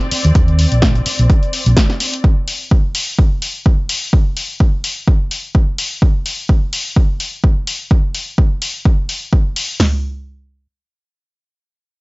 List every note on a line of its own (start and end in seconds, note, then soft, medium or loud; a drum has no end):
0.00 2.25 C4 medium
0.00 2.25 D5 medium
0.00 closed hi-hat soft
0.11 muted fingered electric bass stroke soft
0.11 open hi-hat loud
0.11 shaker medium
0.25 0.31 D#2 medium
0.25 closed hi-hat soft
0.35 kick loud
0.35 closed hi-hat soft
0.35 shaker medium
0.48 closed hi-hat soft
0.59 open hi-hat loud
0.59 shaker loud
0.72 1.00 A#1 medium
0.72 closed hi-hat soft
0.72 shaker soft
0.82 kick loud
0.82 snare loud
0.82 closed hi-hat soft
0.95 closed hi-hat soft
0.95 shaker soft
1.06 muted fingered electric bass stroke soft
1.06 open hi-hat loud
1.06 shaker medium
1.18 1.26 A#1 loud
1.18 closed hi-hat soft
1.18 shaker soft
1.30 kick loud
1.30 closed hi-hat soft
1.43 closed hi-hat soft
1.53 open hi-hat loud
1.53 shaker medium
1.66 1.73 A#1 loud
1.66 closed hi-hat soft
1.66 shaker soft
1.77 kick loud
1.77 snare loud
1.77 closed hi-hat soft
1.90 snare soft
1.90 closed hi-hat soft
1.99 open hi-hat loud
1.99 shaker medium
2.14 closed hi-hat soft
2.24 kick loud
2.48 open hi-hat loud
2.71 kick loud
2.95 open hi-hat loud
3.19 kick loud
3.42 open hi-hat loud
3.66 kick loud
3.89 open hi-hat loud
4.13 kick loud
4.37 open hi-hat medium
4.60 kick loud
4.84 open hi-hat loud
5.08 kick loud
5.31 open hi-hat loud
5.55 kick loud
5.78 open hi-hat loud
6.02 kick loud
6.26 open hi-hat medium
6.49 kick medium
6.73 open hi-hat medium
6.96 kick loud
7.20 open hi-hat loud
7.44 kick loud
7.67 open hi-hat medium
7.91 kick loud
8.15 open hi-hat medium
8.38 kick loud
8.62 open hi-hat medium
8.85 kick loud
9.09 open hi-hat loud
9.33 kick loud
9.56 open hi-hat loud
9.80 snare medium
9.80 floor tom loud
9.80 open hi-hat medium